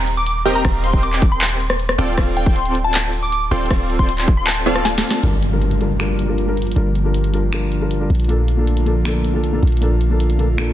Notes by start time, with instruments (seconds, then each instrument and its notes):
Already playing: 808-style bass D#1
0.07 closed hi-hat
0.17 synth pluck D6
0.26 synth pluck D6, closed hi-hat
0.46 supersaw synth C4 G4 A#4 D#5 G5, closed hi-hat
0.50 closed hi-hat
0.55 synth pluck A#5, closed hi-hat
0.60 closed hi-hat
0.65 808-style bass D#1, supersaw synth C4 G4 A#4 D#5 F5, kick, cross-stick, closed hi-hat, crash
0.84 synth pluck C6, closed hi-hat
0.93 supersaw synth C4 G4 A#4 D#5 G5, kick
1.03 synth pluck D6, closed hi-hat
1.13 synth pluck D6, clap, closed hi-hat
1.22 kick, closed hi-hat
1.32 synth pluck C6
1.41 clap, closed hi-hat, crash
1.60 closed hi-hat
1.70 cross-stick
1.79 closed hi-hat
1.89 cross-stick
1.98 808-style bass D1, supersaw synth C4 F4 A4 D5 G5, closed hi-hat
2.03 closed hi-hat
2.08 closed hi-hat
2.13 closed hi-hat
2.18 supersaw synth C4 F4 A4 D5 F5, kick, cross-stick, closed hi-hat, crash
2.37 synth pluck G5, closed hi-hat
2.46 supersaw synth C4 F4 A4 D5 G5, kick
2.56 synth pluck C6, closed hi-hat
2.65 closed hi-hat
2.75 closed hi-hat
2.84 synth pluck A5
2.94 clap, closed hi-hat, crash
3.13 closed hi-hat
3.23 synth pluck D6
3.32 synth pluck D6, closed hi-hat
3.51 808-style bass D1, supersaw synth C4 F4 A4 D5 G5, synth pluck C6, closed hi-hat
3.56 closed hi-hat
3.61 closed hi-hat
3.66 closed hi-hat
3.70 supersaw synth C4 F4 A4 D5 F5, kick, cross-stick, closed hi-hat, crash
3.90 closed hi-hat
3.99 supersaw synth C4 F4 A4 D5 G5, synth pluck C6, kick
4.09 synth pluck C6, closed hi-hat
4.18 clap, closed hi-hat
4.28 kick, closed hi-hat
4.37 synth pluck C6
4.47 synth pluck A5, clap, closed hi-hat, crash
4.66 supersaw synth C4 F4 A4 D5 F5, closed hi-hat
4.76 cross-stick
4.85 synth pluck A5, snare, closed hi-hat
4.98 snare
5.04 closed hi-hat
5.09 snare, closed hi-hat
5.14 closed hi-hat
5.19 felt piano G3, closed hi-hat
5.23 808-style bass G1, analog synth pad D3 F3 G3 A#3 F4, felt piano D4 F4 A#4, closed hi-hat, impact
5.42 closed hi-hat
5.51 felt piano G3 D4 F4 A#4
5.62 closed hi-hat
5.71 closed hi-hat
5.80 felt piano G3 D4 F4 A#4, closed hi-hat
5.99 felt piano G3 D4 F4 A#4, finger snap, closed hi-hat
6.19 closed hi-hat
6.27 felt piano G3 D4 F4 A#4
6.38 closed hi-hat
6.47 felt piano G3 D4 F4 A#4
6.57 closed hi-hat
6.62 closed hi-hat
6.67 closed hi-hat
6.71 felt piano G3, closed hi-hat
6.76 808-style bass G1, felt piano D4 F4 A#4, closed hi-hat
6.95 closed hi-hat
7.04 felt piano G3 D4 F4 A#4
7.14 closed hi-hat
7.24 closed hi-hat
7.33 felt piano G3 D4 F4 A#4, closed hi-hat
7.52 felt piano G3 D4 F4 A#4, finger snap, closed hi-hat
7.72 closed hi-hat
7.80 felt piano G3 D4 F4 A#4
7.91 closed hi-hat
8.00 felt piano G3 D4 F4 A#4
8.10 808-style bass A#1, analog synth pad A3 A#3, closed hi-hat
8.15 closed hi-hat
8.20 closed hi-hat
8.24 felt piano A#2, closed hi-hat
8.29 felt piano A#3 D4 A4, closed hi-hat
8.48 closed hi-hat
8.57 felt piano A#2 A#3 D4 A4
8.67 closed hi-hat
8.77 closed hi-hat
8.85 felt piano A#2 A#3 D4 A4, closed hi-hat
9.05 felt piano A#2 A#3 D4 A4, finger snap, closed hi-hat
9.24 closed hi-hat
9.33 felt piano A#2 A#3 D4 A4
9.44 closed hi-hat
9.52 felt piano A#2 A#3 D4 A4
9.63 808-style bass A#1, closed hi-hat
9.67 closed hi-hat
9.72 closed hi-hat
9.77 felt piano A#2, closed hi-hat
9.82 felt piano A#3 D4 A4, closed hi-hat
10.01 closed hi-hat
10.10 felt piano A#2 A#3 D4 A4
10.20 closed hi-hat
10.30 closed hi-hat
10.38 felt piano A#2 A#3 D4 A4, closed hi-hat
10.57 felt piano A#2 A#3 D4 A4, finger snap, closed hi-hat